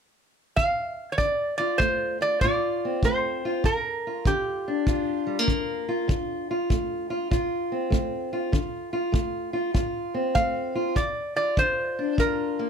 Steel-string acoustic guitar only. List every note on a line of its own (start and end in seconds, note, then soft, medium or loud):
1.19 1.76 D3 medium
1.59 2.20 F4 medium
1.80 2.37 A3 medium
2.21 2.44 F4 medium
2.43 2.99 A2 medium
2.43 3.45 F4 medium
2.85 3.63 C4 medium
3.04 3.61 A3 medium
3.45 3.67 F4 medium
3.64 4.21 G2 medium
4.07 4.88 F4 medium
4.27 4.83 D3 medium
4.68 7.72 D4 medium
4.88 5.44 G2 medium
4.88 5.88 F4 medium
5.27 5.39 G3 soft
5.39 6.09 A#3 soft
5.47 6.04 D3 medium
5.89 6.50 F4 medium
6.08 6.65 D3 medium
6.51 7.10 F4 medium
6.70 7.27 A3 medium
7.10 7.31 F4 medium
7.31 7.88 A2 medium
7.31 8.32 F4 medium
7.72 8.51 C4 soft
7.90 8.48 A3 medium
8.33 8.92 F4 medium
8.52 9.09 D3 medium
8.93 9.53 F4 medium
9.12 9.70 A3 medium
9.53 9.74 F4 medium
9.74 10.31 A2 medium
9.74 10.75 F4 medium
10.14 10.94 C4 medium
10.35 10.92 A3 medium
10.75 10.98 F4 medium
10.95 11.53 G2 medium
11.36 12.18 F4 medium
11.57 12.14 D3 medium
11.99 12.70 D4 soft
12.18 12.70 G2 medium
12.18 12.70 F4 medium
12.59 12.70 A#3 medium